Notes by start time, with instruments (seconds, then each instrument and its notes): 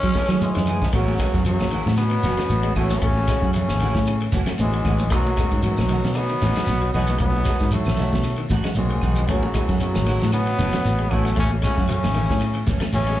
Already playing: tenor saxophone C#4
0.01 clean electric guitar E3, fingered electric bass F#3, tine electric piano E4 G#4, kick, closed hi-hat, shekere
0.13 clean electric guitar C#3 E3 A3 C#4, tine electric piano A3 E4 A4, kick, snare, closed hi-hat, high conga, shekere
0.17 clean electric guitar G#4
0.29 clean electric guitar D#3 A3 C#4 G#4, fingered electric bass F#3, snare, closed hi-hat, claves, shekere
0.41 bass trombone G#2, tenor saxophone E3, trombone G#3, closed hi-hat, high conga, shekere
0.55 fingered electric bass F#2, clean electric guitar E3, snare, closed hi-hat, shekere
0.59 low conga
0.67 clean electric guitar C#3 E3 A3 C#4 G#4, closed hi-hat, low conga, claves, shekere
0.82 kick, snare, closed hi-hat, low conga, shekere
0.93 fingered electric bass A1, bass trombone F#2, tenor saxophone C#3, clean electric guitar E3 A3 C#4 F#4, trombone F#3, tine electric piano B3 C#4 F#4, muted clean electric guitar stroke, kick, crash, shekere
1.08 high conga
1.18 clean electric guitar E3 G#3 A3 C#4 F#4, tine electric piano B3 C#4 F#4, kick, snare, ride bell, claves, shekere
1.34 fingered electric bass F#2, kick, snare, ride bell, shekere
1.45 bass trombone F#2, tenor saxophone C#3, trombone F#3, clean electric guitar F#3, ride bell, high conga, low conga, shekere
1.59 fingered electric bass A1, snare, high conga, claves, shekere
1.71 clean electric guitar D#3 E3 A3 C#4 F#4, open hi-hat, high conga, low conga, shekere
1.86 fingered electric bass A2, snare, ride bell
1.97 bass trombone B2, clean electric guitar C#3, tenor saxophone F#3, trombone B3, tine electric piano B3 C#4 F#4, snare, ride bell, high conga, claves, shekere
2.11 clean electric guitar E3
2.23 fingered electric bass F#1, clean electric guitar E3 A3 C#4 F#4, tine electric piano B3 C#4 F#4, snare, ride bell, high conga, low conga, shekere
2.37 clean electric guitar A3, muted fingered electric bass stroke, snare, ride bell, claves, shekere
2.49 fingered electric bass A1, ride bell, high conga, shekere
2.63 clean electric guitar G#3
2.75 fingered electric bass A1, bass trombone A2, clean electric guitar E3 A3 C#4 F#4, tenor saxophone F#3, trombone A3, tine electric piano B3 C#4 F#4, kick, ride bell, low conga, claves, shekere
2.90 clean electric guitar F#3, snare, high conga, shekere
3.01 fingered electric bass A1, bass trombone C#3, clean electric guitar A3, tenor saxophone A3, trombone C#4, kick, ride bell, shekere
3.18 high conga
3.27 clean electric guitar E3 G#3 A3 C#4 F#4, kick, snare, ride bell, claves, shekere
3.41 fingered electric bass F#2, clean electric guitar C#4 F#4, muted clean electric guitar stroke, kick, shekere
3.54 bass trombone C#3, clean electric guitar F#3, tenor saxophone A3, trombone C#4, ride bell, high conga, low conga, shekere
3.69 fingered electric bass A1, snare, high conga, claves, shekere
3.79 clean electric guitar D#3 E3 A3 C#4 F#4, open hi-hat, low conga, shekere
3.95 fingered electric bass A2, kick, snare
4.05 clean electric guitar C#3, ride bell, high conga, claves, shekere
4.22 clean electric guitar E3
4.32 fingered electric bass F#1, clean electric guitar E3 A3 C#4 F#4, kick, snare, ride bell, high conga, low conga, shekere
4.46 clean electric guitar A3, tine electric piano C#4 F#4, muted fingered electric bass stroke, snare, ride bell, claves, shekere
4.58 fingered electric bass A1, bass trombone G#2, tenor saxophone E3, trombone G#3, tine electric piano B3 C#4 F#4, ride bell, high conga, shekere
4.74 clean electric guitar G#3
4.85 fingered electric bass A1, clean electric guitar E3 A3 C#4 F#4, kick, snare, ride bell, low conga, claves, shekere
4.99 clean electric guitar F#3, high conga, shekere
5.10 fingered electric bass B1, bass trombone F#2, clean electric guitar D#3 A3 D#4 F#4, trombone F#3, tine electric piano A3 C#4 D#4, kick, ride bell, high conga, shekere
5.15 tenor saxophone B2
5.27 high conga
5.36 clean electric guitar D#3 G#3 A3 D#4 F#4, tine electric piano A3 C#4 F#4, kick, ride bell, claves, shekere
5.51 fingered electric bass G#2, kick, ride bell, shekere
5.63 bass trombone F#2, tenor saxophone B2, trombone F#3, clean electric guitar F#3, ride bell, high conga, low conga, shekere
5.77 fingered electric bass B1, snare, high conga, claves, shekere
5.88 clean electric guitar D#3 A3 D#4 F#4, open hi-hat, high conga, low conga, shekere
6.04 fingered electric bass B2, snare, ride bell
6.15 bass trombone B2, clean electric guitar C#3, tenor saxophone F#3, tine electric piano A3 C#4 D#4, trombone B3, ride bell, high conga, claves, shekere
6.30 clean electric guitar D#3
6.41 fingered electric bass A1, clean electric guitar D#3 A3 D#4 F#4, tine electric piano A3 C#4 D#4, ride bell, high conga, shekere
6.56 clean electric guitar G#3, snare, ride bell, claves, shekere
6.67 fingered electric bass B1, ride bell, high conga, shekere
6.82 clean electric guitar F#3
6.94 fingered electric bass B1, bass trombone B2, clean electric guitar D#3 A3 D#4 F#4, tenor saxophone G#3, tine electric piano A3 C#4 D#4, trombone B3, kick, ride bell, low conga, claves, shekere
7.07 clean electric guitar E3, high conga, shekere
7.19 fingered electric bass B1, bass trombone B2, tenor saxophone F#3, clean electric guitar A3, trombone B3, kick, ride bell, shekere
7.37 high conga
7.45 clean electric guitar D#3 G#3 A3 D#4 F#4, kick, snare, ride bell, claves, shekere
7.59 fingered electric bass G#2, kick, snare, shekere
7.71 bass trombone A2, clean electric guitar F#3, tenor saxophone F#3, trombone A3, ride bell, high conga, low conga, shekere
7.85 fingered electric bass B1, snare, high conga, claves, shekere
7.97 clean electric guitar D#3 A3 D#4 F#4, snare, open hi-hat, high conga, low conga, shekere
8.13 fingered electric bass B2, kick, snare
8.23 clean electric guitar C#3, snare, ride bell, high conga, claves, shekere
8.38 clean electric guitar D#3
8.50 fingered electric bass A1, clean electric guitar D#3 A3 D#4 F#4, kick, ride bell, high conga, low conga, shekere
8.64 clean electric guitar G#3, tine electric piano C#4 F#4, muted fingered electric bass stroke, snare, ride bell, claves, shekere
8.75 fingered electric bass B1, bass trombone G#2, tenor saxophone D#3, trombone G#3, tine electric piano A3 C#4 F#4, ride bell, high conga, shekere
8.91 clean electric guitar F#3
8.95 high conga
9.02 fingered electric bass B1, clean electric guitar D#3 A3 D#4 F#4, kick, ride bell, low conga, claves, shekere
9.12 low conga
9.16 muted clean electric guitar stroke, shekere
9.21 low conga
9.28 fingered electric bass A1, bass trombone F#2, tenor saxophone C#3, clean electric guitar E3 A3 C#4 F#4, tine electric piano F#3 B3 C#4, trombone F#3, kick, ride bell, high conga, shekere
9.43 high conga
9.54 clean electric guitar E3 G#3 A3 C#4 F#4, tine electric piano F#3 B3 E4, kick, ride bell, claves, shekere
9.69 fingered electric bass F#2, clean electric guitar A3 C#4 F#4, kick, snare, ride bell, shekere
9.80 bass trombone F#2, tenor saxophone C#3, trombone F#3, clean electric guitar F#3, ride bell, high conga, shekere
9.94 fingered electric bass A1, snare, high conga, claves, shekere
10.05 clean electric guitar D#3 E3 A3 F#4, snare, open hi-hat, high conga, low conga, shekere
10.21 fingered electric bass A2, snare, ride bell
10.32 bass trombone B2, clean electric guitar C#3, tine electric piano F#3 B3 C#4, tenor saxophone F#3, trombone B3, ride bell, high conga, claves, shekere
10.47 clean electric guitar E3
10.57 fingered electric bass F#1, clean electric guitar E3 A3 C#4 F#4, tine electric piano F#3 B3 E4, snare, ride bell, high conga, low conga, shekere
10.73 clean electric guitar A3, muted fingered electric bass stroke, snare, ride bell, claves, shekere
10.85 fingered electric bass A1, ride bell, high conga, shekere
10.99 clean electric guitar G#3
11.09 fingered electric bass A1, bass trombone A2, clean electric guitar E3 A3 C#4 F#4, tine electric piano F#3 B3 C#4, tenor saxophone F#3, trombone A3, kick, ride bell, low conga, claves, shekere
11.25 clean electric guitar F#3, shekere
11.36 fingered electric bass A1, bass trombone C#3, clean electric guitar A3, tenor saxophone A3, trombone C#4, kick, ride bell, high conga, shekere
11.50 high conga
11.62 bass trombone C#3, clean electric guitar E3 G#3 A3 C#4 F#4, tenor saxophone A3, trombone C#4, kick, snare, ride bell, claves, shekere
11.78 fingered electric bass F#2, clean electric guitar A3 C#4 F#4, kick, snare, shekere
11.89 bass trombone C#3, clean electric guitar F#3, trombone C#4, ride bell, high conga, low conga, shekere
11.93 tenor saxophone A3
12.03 fingered electric bass A1, snare, high conga, claves, shekere
12.15 clean electric guitar D#3 E3 A3 C#4, muted clean electric guitar stroke, open hi-hat, high conga, low conga, shekere
12.30 fingered electric bass A2, kick, snare
12.41 muted clean electric guitar stroke, ride bell, high conga, claves, shekere
12.55 clean electric guitar E3
12.67 fingered electric bass F#1, clean electric guitar E3 A3 C#4, muted clean electric guitar stroke, kick, snare, ride bell, high conga, low conga, shekere
12.80 clean electric guitar A3, tine electric piano B3 C#4, muted fingered electric bass stroke, snare, ride bell, claves, shekere
12.93 fingered electric bass A1, bass trombone C#3, tine electric piano F#3 B3 C#4, trombone C#4, ride bell, high conga, shekere
12.97 tenor saxophone A3
13.07 clean electric guitar G#3